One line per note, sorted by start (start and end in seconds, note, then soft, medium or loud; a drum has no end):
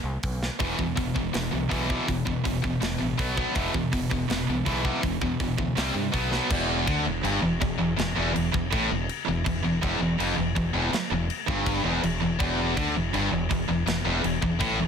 0.04 0.16 C2 medium
0.23 0.48 B1 medium
0.23 kick medium
0.23 open hi-hat medium
0.43 snare medium
0.59 0.73 E1 medium
0.59 0.76 E2 medium
0.59 0.76 B2 medium
0.59 0.78 E3 loud
0.59 kick loud
0.59 open hi-hat medium
0.77 0.94 E2 medium
0.77 0.91 E2 medium
0.77 0.95 B2 medium
0.77 kick medium
0.96 1.09 E1 loud
0.96 1.13 E2 medium
0.96 1.13 B2 medium
0.96 kick medium
0.96 open hi-hat medium
1.14 1.28 E1 medium
1.14 1.32 E2 medium
1.14 1.32 B2 medium
1.14 kick medium
1.33 1.47 E1 medium
1.33 1.50 E2 medium
1.33 1.50 B2 medium
1.33 snare loud
1.33 open hi-hat medium
1.51 1.66 B1 medium
1.51 1.68 E2 medium
1.51 1.69 B2 medium
1.69 1.96 B1 medium
1.69 1.87 E2 medium
1.69 1.88 B2 medium
1.69 1.88 E3 medium
1.69 kick medium
1.69 open hi-hat medium
1.88 2.06 E2 medium
1.88 2.07 B2 loud
1.88 2.07 E3 loud
1.88 kick medium
2.08 2.21 E1 medium
2.08 2.24 E2 medium
2.08 2.25 B2 medium
2.08 kick loud
2.08 open hi-hat medium
2.25 2.42 E2 medium
2.25 2.39 E2 medium
2.25 2.43 B2 medium
2.25 kick medium
2.44 2.58 E1 medium
2.44 2.61 E2 medium
2.44 2.61 B2 medium
2.44 kick medium
2.44 open hi-hat medium
2.62 2.76 E1 medium
2.62 2.79 E2 medium
2.62 2.80 B2 medium
2.62 kick medium
2.80 2.94 E1 medium
2.80 2.97 E2 medium
2.80 2.98 B2 medium
2.80 snare loud
2.80 open hi-hat medium
2.98 3.13 A1 medium
2.98 3.16 E2 medium
2.98 3.16 B2 medium
3.18 3.43 B1 medium
3.18 3.35 B2 medium
3.18 3.36 F#3 medium
3.18 3.36 B3 medium
3.18 kick medium
3.18 open hi-hat medium
3.37 3.54 B2 medium
3.37 3.55 F#3 loud
3.37 3.55 B3 loud
3.37 kick medium
3.54 3.68 E1 medium
3.54 3.72 E2 medium
3.54 3.73 B2 medium
3.54 3.73 E3 medium
3.54 kick loud
3.54 open hi-hat medium
3.74 3.91 E2 medium
3.74 3.86 E2 medium
3.74 3.91 B2 medium
3.74 kick medium
3.93 4.05 E1 medium
3.93 4.09 E2 medium
3.93 4.10 B2 medium
3.93 kick medium
3.93 open hi-hat medium
4.11 4.23 E1 medium
4.11 4.28 E2 medium
4.11 4.28 B2 medium
4.11 kick medium
4.30 4.42 E1 medium
4.30 4.46 E2 medium
4.30 4.46 B2 loud
4.30 snare loud
4.30 open hi-hat medium
4.49 4.61 B1 loud
4.49 4.65 E2 medium
4.49 4.65 B2 medium
4.66 4.91 B1 loud
4.66 4.83 E2 medium
4.66 4.83 B2 medium
4.66 4.84 E3 medium
4.66 kick medium
4.66 open hi-hat medium
4.84 5.01 E2 loud
4.84 5.02 B2 loud
4.84 5.02 E3 loud
4.84 kick medium
5.02 5.16 E1 medium
5.02 5.19 E2 medium
5.02 5.19 B2 medium
5.02 kick loud
5.02 open hi-hat medium
5.22 5.34 E2 medium
5.22 5.38 E2 medium
5.22 5.38 B2 medium
5.22 kick medium
5.40 5.52 E1 loud
5.40 5.57 E2 medium
5.40 5.57 B2 medium
5.40 kick medium
5.40 open hi-hat medium
5.58 5.71 D2 medium
5.58 5.75 E2 medium
5.58 5.75 B2 medium
5.58 kick medium
5.77 5.89 C2 medium
5.77 5.94 C3 medium
5.77 5.94 G3 loud
5.77 5.95 C4 loud
5.77 snare loud
5.77 open hi-hat medium
5.95 6.07 G2 medium
5.95 6.12 C3 medium
5.95 6.12 G3 medium
6.12 6.38 B1 medium
6.12 6.30 B2 medium
6.12 6.31 F#3 medium
6.12 6.31 B3 medium
6.12 kick medium
6.12 open hi-hat medium
6.31 6.49 B2 medium
6.31 6.49 F#3 loud
6.31 6.50 B3 loud
6.31 snare medium
6.50 6.85 E1 loud
6.50 6.86 E2 loud
6.50 kick loud
6.50 crash loud
6.50 crash medium
6.86 7.05 D2 loud
6.86 7.05 D3 loud
6.86 kick medium
6.86 crash medium
7.06 7.23 E1 medium
7.06 7.20 E2 medium
7.24 7.42 G1 medium
7.24 7.41 G2 loud
7.24 crash medium
7.42 7.60 E1 medium
7.42 7.57 E2 medium
7.61 7.79 E1 medium
7.61 7.76 E2 medium
7.61 kick loud
7.61 crash medium
7.78 7.97 E1 medium
7.78 7.93 E2 medium
7.97 8.15 E1 medium
7.97 8.12 E2 medium
7.97 snare loud
7.97 crash medium
8.16 8.34 E1 loud
8.16 8.33 E2 loud
8.34 8.53 E1 medium
8.34 8.49 E2 medium
8.34 crash medium
8.53 8.71 E1 medium
8.53 8.68 E2 medium
8.53 kick loud
8.73 8.89 A1 medium
8.73 8.90 A2 loud
8.73 kick medium
8.73 crash medium
8.90 9.07 E1 medium
8.90 9.06 E2 medium
9.09 crash medium
9.28 9.45 E1 medium
9.28 9.42 E2 medium
9.46 9.63 E1 medium
9.46 9.61 E2 medium
9.46 kick loud
9.46 crash medium
9.64 9.82 E1 medium
9.64 9.79 E2 medium
9.82 9.99 E1 loud
9.82 10.00 E2 loud
9.82 kick loud
9.82 crash medium
10.00 10.17 E1 medium
10.00 10.16 E2 medium
10.19 10.36 F1 medium
10.19 10.37 F2 loud
10.19 crash medium
10.38 10.55 E1 medium
10.38 10.52 E2 medium
10.55 10.73 E1 medium
10.55 10.70 E2 medium
10.55 kick medium
10.55 crash medium
10.73 10.91 E1 loud
10.73 10.91 E2 loud
10.92 muted distorted electric guitar stroke medium
10.92 muted fingered electric bass stroke soft
10.92 snare loud
10.92 crash medium
11.11 11.28 E1 medium
11.11 11.26 E2 medium
11.30 crash medium
11.48 11.82 G1 loud
11.48 11.84 G2 loud
11.48 kick medium
11.66 kick medium
11.66 crash medium
11.85 12.02 E1 medium
11.85 12.02 E2 loud
12.03 12.20 E1 medium
12.03 12.18 E2 medium
12.03 crash medium
12.22 12.39 E1 medium
12.22 12.36 E2 medium
12.39 12.74 E1 loud
12.39 12.76 E2 loud
12.39 kick loud
12.39 crash medium
12.76 12.94 D2 loud
12.76 12.94 D3 loud
12.76 kick loud
12.76 crash medium
12.95 13.13 E1 medium
12.95 13.10 E2 medium
13.14 13.31 G1 medium
13.14 13.31 G2 loud
13.14 crash medium
13.33 13.49 E1 medium
13.33 13.47 E2 medium
13.51 13.68 E1 medium
13.51 13.65 E2 medium
13.51 kick medium
13.51 crash medium
13.69 13.86 E1 medium
13.69 13.83 E2 medium
13.86 14.04 E1 medium
13.86 14.01 E2 medium
13.86 snare loud
13.86 crash medium
14.05 14.23 E1 loud
14.05 14.22 E2 loud
14.23 14.41 E1 medium
14.23 14.38 E2 medium
14.23 crash medium
14.42 14.60 E1 medium
14.42 14.57 E2 medium
14.42 kick medium
14.59 14.78 A1 loud
14.59 14.78 A2 loud
14.59 kick medium
14.59 crash medium
14.79 14.88 E1 medium
14.79 14.88 E2 medium